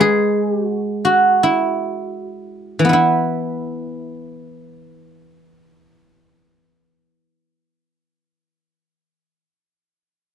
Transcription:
0.00 3.86 G#3 soft
0.00 0.51 G#4 medium
0.00 1.73 B4 medium
0.00 0.38 C#5 medium
0.51 0.63 G4 medium
0.63 1.05 F#4 medium
1.05 3.48 F#4 medium
1.43 2.89 E4 medium
2.79 9.42 E3 soft
2.85 8.13 B3 soft
2.89 2.93 E4 soft
2.93 7.77 E4 medium

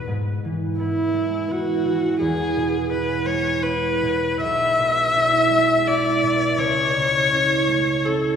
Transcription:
0.00 0.78 B3 soft
0.07 2.24 G#2 soft
0.45 1.84 E3 soft
0.79 1.47 B3 soft
0.79 1.47 E4 soft
0.79 1.52 E4 soft
1.14 3.25 G#3 soft
1.48 2.90 B3 soft
1.48 2.90 E4 soft
1.48 2.20 F#4 medium
1.85 2.24 E3 soft
2.21 4.45 E2 soft
2.21 2.90 G#4 medium
2.56 4.01 B2 soft
2.91 3.61 B3 soft
2.91 3.62 E4 soft
2.91 3.28 B4 medium
3.26 5.49 G#3 soft
3.26 3.64 C#5 medium
3.62 6.61 B3 soft
3.62 5.14 E4 soft
3.62 4.41 B4 medium
4.03 4.45 B2 soft
4.41 6.61 B1 soft
4.41 5.88 E5 medium
4.79 6.21 B2 soft
5.15 5.86 D4 soft
5.15 5.87 E4 soft
5.50 6.62 G#3 soft
5.87 6.62 D4 soft
5.87 7.31 E4 soft
5.87 6.60 D5 medium
6.23 6.62 B2 soft
6.58 8.36 C#2 soft
6.58 8.07 C#5 medium
6.95 8.36 C#3 soft
7.32 8.04 C#4 soft
7.32 8.05 E4 soft
7.68 8.36 A3 soft
8.05 8.36 C#4 soft
8.05 8.36 E4 soft
8.05 8.36 A4 medium

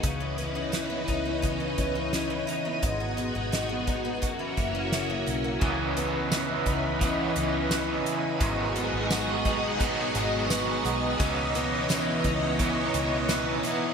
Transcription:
0.00 1.04 C#2 medium
0.00 0.11 G#2 medium
0.00 1.41 C#3 medium
0.00 2.80 E3 medium
0.00 0.11 F#3 soft
0.00 0.37 B3 medium
0.00 2.80 C#4 medium
0.00 0.23 D#4 medium
0.00 2.80 B4 medium
0.00 4.18 D#5 medium
0.00 kick loud
0.00 closed hi-hat medium
0.20 0.71 E3 soft
0.38 0.89 B3 medium
0.38 closed hi-hat soft
0.55 1.07 D#4 medium
0.72 1.59 E3 medium
0.72 snare loud
0.72 closed hi-hat medium
0.90 1.25 B3 medium
1.08 1.75 C#2 medium
1.08 1.95 D#4 medium
1.08 kick medium
1.08 closed hi-hat soft
1.25 1.77 B3 soft
1.42 2.89 C#3 medium
1.42 kick medium
1.42 closed hi-hat medium
1.60 2.12 E3 soft
1.78 2.45 C#2 medium
1.78 2.29 B3 medium
1.78 kick medium
1.78 closed hi-hat soft
1.95 2.46 D#4 medium
2.13 2.90 E3 medium
2.13 snare medium
2.13 closed hi-hat medium
2.30 2.64 B3 medium
2.47 2.89 D#4 medium
2.47 closed hi-hat soft
2.65 2.90 B3 soft
2.82 3.33 G#1 medium
2.82 4.21 G#2 medium
2.82 4.21 B3 medium
2.82 5.59 F#4 medium
2.82 4.21 G#4 medium
2.82 kick loud
2.82 closed hi-hat medium
3.00 4.29 F#3 soft
3.17 3.68 B3 medium
3.17 closed hi-hat soft
3.35 4.22 G#1 medium
3.35 3.86 D#4 medium
3.52 4.29 D#3 medium
3.52 snare medium
3.52 closed hi-hat medium
3.69 4.03 B3 soft
3.87 4.29 D#4 medium
3.87 kick medium
3.87 closed hi-hat soft
4.05 4.29 B3 medium
4.22 4.56 F#1 medium
4.22 5.69 F#2 medium
4.22 5.61 C#4 medium
4.22 5.61 A#4 medium
4.22 5.61 E5 medium
4.22 kick medium
4.22 closed hi-hat medium
4.39 6.31 E3 soft
4.57 5.24 F#1 medium
4.57 5.08 A#3 medium
4.57 kick medium
4.57 closed hi-hat soft
4.75 5.26 C#4 medium
4.92 5.60 C#3 medium
4.92 snare medium
4.92 closed hi-hat medium
5.10 5.43 A#3 medium
5.26 5.60 B1 medium
5.26 6.00 C#4 medium
5.26 closed hi-hat soft
5.44 5.69 A#3 soft
5.59 6.63 C#2 medium
5.59 6.98 C#3 medium
5.59 8.41 C#3 medium
5.59 7.01 E3 medium
5.59 8.39 E3 medium
5.59 8.39 C#4 medium
5.59 8.39 B4 medium
5.59 13.94 D#5 medium
5.59 kick loud
5.59 crash medium
5.65 7.04 B3 medium
5.65 7.05 D#4 medium
5.97 7.01 B3 medium
5.97 closed hi-hat medium
6.31 7.35 E3 medium
6.31 snare loud
6.31 closed hi-hat medium
6.31 tambourine medium
6.66 7.33 C#2 medium
6.66 9.45 D#4 medium
6.66 kick medium
6.66 closed hi-hat soft
6.99 8.40 C#3 medium
6.99 8.41 E3 medium
6.99 7.71 B3 medium
6.99 kick medium
6.99 closed hi-hat medium
7.05 8.44 B3 loud
7.05 8.46 D#4 medium
7.36 8.03 C#2 medium
7.36 8.05 E3 medium
7.36 closed hi-hat medium
7.71 8.75 B3 medium
7.71 snare loud
7.71 closed hi-hat medium
7.71 tambourine medium
8.06 8.48 E3 medium
8.06 closed hi-hat medium
8.38 8.90 G#1 loud
8.38 9.76 G#2 medium
8.38 11.20 G#2 medium
8.38 9.80 D#3 medium
8.38 13.94 B3 medium
8.38 11.17 F#4 medium
8.38 11.17 G#4 medium
8.38 kick loud
8.38 closed hi-hat medium
8.43 9.81 F#3 medium
8.43 9.84 B3 medium
8.43 9.86 D#4 loud
8.76 9.79 B3 medium
8.76 closed hi-hat soft
8.93 10.11 G#1 medium
9.10 10.14 F#3 medium
9.10 snare loud
9.10 closed hi-hat medium
9.10 tambourine medium
9.45 11.92 D#4 medium
9.45 kick medium
9.45 closed hi-hat soft
9.78 11.19 G#2 medium
9.78 11.17 D#3 medium
9.78 10.50 B3 medium
9.78 kick medium
9.78 closed hi-hat medium
9.82 11.20 F#3 medium
9.82 11.23 B3 medium
9.82 11.24 D#4 medium
10.15 10.82 G#1 medium
10.15 10.83 F#3 medium
10.15 closed hi-hat medium
10.50 11.55 B3 medium
10.50 snare loud
10.50 closed hi-hat medium
10.50 tambourine medium
10.85 11.18 B1 medium
10.85 11.27 F#3 medium
10.85 closed hi-hat medium
11.17 12.21 C#2 loud
11.17 12.57 C#3 medium
11.17 13.94 C#3 medium
11.17 13.94 E3 medium
11.17 12.59 E3 medium
11.17 13.94 C#5 medium
11.17 kick loud
11.17 closed hi-hat medium
11.24 12.61 B3 medium
11.24 12.61 D#4 loud
11.55 12.59 B3 medium
11.55 closed hi-hat medium
11.89 12.93 E3 medium
11.89 snare loud
11.89 closed hi-hat medium
11.89 tambourine medium
12.24 12.91 C#2 loud
12.24 13.94 D#4 medium
12.24 kick medium
12.24 closed hi-hat medium
12.58 13.64 C#3 medium
12.58 13.65 E3 medium
12.58 13.28 B3 medium
12.58 13.66 B3 medium
12.58 13.63 D#4 loud
12.58 kick medium
12.58 closed hi-hat medium
12.94 13.61 C#2 loud
12.94 13.62 E3 medium
12.94 closed hi-hat medium
13.28 13.94 B3 medium
13.28 snare loud
13.28 closed hi-hat medium
13.28 tambourine medium
13.63 13.94 E3 medium
13.63 13.94 B3 soft
13.63 13.94 D#4 medium
13.63 closed hi-hat medium
13.68 13.94 E3 soft

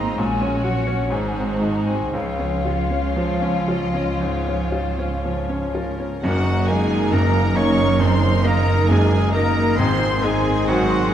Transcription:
0.00 0.14 G#1 soft
0.00 0.14 G#2 medium
0.00 0.20 G#3 soft
0.00 0.16 A#3 medium
0.00 0.14 C4 medium
0.00 0.21 C4 soft
0.00 0.21 D#4 soft
0.00 0.18 F4 medium
0.00 0.15 D#5 medium
0.00 0.18 A#5 medium
0.17 1.11 A#1 medium
0.17 1.08 A#2 medium
0.17 0.64 G#3 medium
0.17 1.11 C#4 medium
0.17 1.11 F#4 medium
0.17 1.11 C#5 medium
0.17 0.64 G#5 medium
0.41 0.78 C#4 soft
0.63 1.11 F#3 soft
0.63 1.02 F#4 soft
0.63 1.11 F#5 medium
0.87 1.11 C#4 soft
1.10 2.14 G#1 medium
1.10 2.10 G#2 medium
1.10 2.14 G#3 medium
1.10 2.13 D#4 soft
1.10 2.12 F#4 soft
1.10 2.14 C5 soft
1.10 1.20 G#5 medium
1.19 1.28 A#5 soft
1.28 1.37 G#5 soft
1.36 1.77 C4 soft
1.36 1.46 A#5 soft
1.46 1.55 G#5 soft
1.55 1.65 A#5 soft
1.62 2.04 D#4 soft
1.62 1.73 G#5 medium
1.73 1.83 A#5 soft
1.83 2.13 C4 soft
1.83 2.14 G#5 medium
2.13 4.16 C#2 medium
2.13 5.98 C#2 soft
2.13 5.74 F3 medium
2.13 5.98 C#4 soft
2.13 6.03 F4 medium
2.13 3.05 C#5 soft
2.13 5.70 F5 medium
2.39 2.81 C#4 soft
2.65 3.07 F4 soft
2.90 3.32 C#4 soft
3.16 3.58 F3 soft
3.16 3.66 C#5 medium
3.42 3.84 C#4 soft
3.68 4.10 F4 soft
3.68 4.20 D#5 medium
3.94 4.36 C#4 soft
4.20 4.61 G#2 soft
4.20 4.71 C#5 medium
4.47 4.87 C#4 soft
4.70 5.13 F4 soft
4.70 5.22 C5 medium
4.99 5.39 C#4 soft
5.22 5.65 F3 soft
5.22 5.74 C#5 medium
5.49 5.90 C#4 soft
5.73 6.14 F4 soft
5.73 6.23 A#4 soft
6.00 6.23 C#4 soft
6.22 9.75 F#1 medium
6.22 6.67 F#1 medium
6.22 6.67 F#2 medium
6.22 9.75 F#2 medium
6.22 9.75 D#3 medium
6.22 6.65 F#3 medium
6.22 9.75 A#3 medium
6.22 6.45 A#3 medium
6.22 9.75 D#4 medium
6.22 6.69 F#4 medium
6.22 6.71 F#4 medium
6.22 9.76 A#4 medium
6.22 6.64 F#5 medium
6.22 9.51 A#5 medium
6.47 6.69 D#4 medium
6.67 7.13 G#3 medium
6.67 7.08 A#3 soft
6.67 6.91 A#3 medium
6.67 7.08 D#4 soft
6.67 7.14 G#4 medium
6.67 7.12 G#5 medium
6.91 7.13 D#4 medium
7.12 7.55 F#1 medium
7.12 7.55 F#2 medium
7.12 7.57 A#3 medium
7.12 7.35 A#3 medium
7.12 7.58 A#4 medium
7.12 7.56 A#5 medium
7.35 7.56 D#4 medium
7.56 7.96 A#3 soft
7.56 7.79 A#3 medium
7.56 8.00 C#4 medium
7.56 7.96 D#4 medium
7.56 8.01 C#5 medium
7.56 8.02 C#5 medium
7.56 8.00 C#6 medium
7.79 8.01 D#4 soft
7.99 8.43 F#1 medium
7.99 8.43 F#2 medium
7.99 8.22 A#3 medium
7.99 8.45 C4 medium
7.99 8.45 C5 medium
7.99 8.47 C5 medium
7.99 8.45 C6 medium
8.24 8.46 D#4 medium
8.44 8.85 A#3 soft
8.44 8.90 A#3 medium
8.44 8.68 A#3 medium
8.44 8.85 D#4 medium
8.44 8.88 A#4 medium
8.44 8.89 A#4 medium
8.44 8.89 A#5 medium
8.68 8.90 D#4 medium
8.89 9.33 F#1 medium
8.89 9.33 F#2 medium
8.89 9.34 G#3 medium
8.89 9.12 A#3 medium
8.89 9.32 G#4 medium
8.89 9.36 G#4 medium
8.89 9.34 G#5 medium
9.12 9.34 D#4 medium
9.33 9.79 A#3 medium
9.33 9.75 A#3 soft
9.33 9.57 A#3 medium
9.33 9.76 D#4 medium
9.33 9.79 A#4 medium
9.33 9.80 A#4 medium
9.33 9.77 A#5 medium
9.57 9.79 D#4 medium
9.77 11.14 G#1 medium
9.77 10.22 G#1 medium
9.77 11.14 G#2 medium
9.77 11.09 G#2 medium
9.77 10.22 G#2 medium
9.77 11.14 D#3 medium
9.77 10.00 G#3 medium
9.77 11.14 C4 medium
9.77 10.23 C4 medium
9.77 11.14 D#4 medium
9.77 11.14 G#4 medium
9.77 10.24 C5 medium
9.77 10.25 C5 medium
9.77 10.23 C6 medium
9.77 11.14 C6 medium
10.01 10.23 C4 medium
10.23 10.68 G#3 medium
10.23 10.64 G#3 medium
10.23 10.64 C4 soft
10.23 10.46 D#4 medium
10.23 10.64 D#4 soft
10.23 10.66 G#4 medium
10.23 10.67 G#4 medium
10.23 10.68 G#5 medium
10.46 10.68 C4 medium
10.67 11.12 G#1 medium
10.67 11.12 G#2 medium
10.67 11.13 F#3 medium
10.67 10.90 G#3 medium
10.67 11.11 F#4 medium
10.67 11.14 F#4 medium
10.67 11.13 F#5 medium
10.89 11.12 C4 medium

